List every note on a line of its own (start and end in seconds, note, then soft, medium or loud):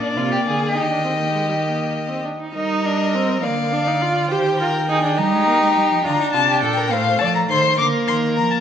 0.00 0.76 A#3 medium
0.00 0.19 D4 medium
0.00 0.73 D5 medium
0.16 0.45 C3 medium
0.16 0.31 F4 medium
0.32 0.37 G4 medium
0.45 0.76 D3 medium
0.45 0.78 G#4 medium
0.74 2.24 D#3 medium
0.74 0.89 D#4 medium
0.74 2.25 G4 medium
0.74 2.21 D#5 medium
0.90 1.04 D4 medium
1.04 1.10 C4 medium
1.19 1.33 A#3 medium
1.33 1.48 G#3 medium
1.48 1.54 G3 soft
1.64 2.10 A#3 soft
2.08 2.23 C4 medium
2.24 2.30 D4 soft
2.40 2.54 D#4 medium
2.54 3.45 G3 medium
2.54 2.87 D#4 medium
2.54 3.46 A#4 medium
2.54 3.39 D#5 medium
2.85 3.17 D4 medium
3.15 3.43 C4 medium
3.43 4.31 D3 medium
3.43 3.74 A#3 medium
3.43 4.30 D5 medium
3.43 4.29 F5 medium
3.72 3.89 D4 medium
3.87 4.03 D#4 medium
4.02 4.33 F4 medium
4.30 5.20 D#3 medium
4.30 4.60 G4 medium
4.30 4.59 C5 medium
4.30 5.19 G5 medium
4.60 4.69 F4 medium
4.60 4.88 A#4 medium
4.89 5.03 D#4 medium
4.89 5.17 G#4 medium
5.04 5.19 D4 medium
5.18 5.35 G3 medium
5.18 6.04 D#4 medium
5.18 6.07 G4 medium
5.18 6.04 A#5 medium
5.33 5.47 G#3 medium
5.47 5.61 A#3 medium
5.62 5.67 G#3 medium
5.76 5.82 G3 medium
5.90 5.96 F3 medium
6.04 6.13 D3 medium
6.04 6.93 D4 medium
6.04 6.19 F4 medium
6.04 6.32 A#5 medium
6.20 6.26 D#4 medium
6.33 6.64 C3 medium
6.33 6.40 F4 medium
6.33 6.61 A5 medium
6.48 6.62 G4 medium
6.62 6.93 A#2 medium
6.62 6.79 A4 medium
6.62 6.93 G5 medium
6.78 6.95 A#4 medium
6.91 7.22 A2 medium
6.91 7.77 A3 medium
6.91 7.20 C5 medium
6.91 7.21 F5 medium
7.19 7.49 F3 medium
7.19 7.29 D5 medium
7.19 7.34 A5 medium
7.35 7.41 A#5 medium
7.49 7.78 D#3 medium
7.49 7.78 C5 medium
7.49 7.77 C6 medium
7.78 7.86 D3 medium
7.78 8.60 A#3 medium
7.78 8.60 A#4 medium
7.78 7.86 D6 medium
8.07 8.38 D#3 medium
8.07 8.16 C6 medium
8.36 8.60 F3 medium
8.36 8.51 A#5 medium
8.51 8.57 A5 medium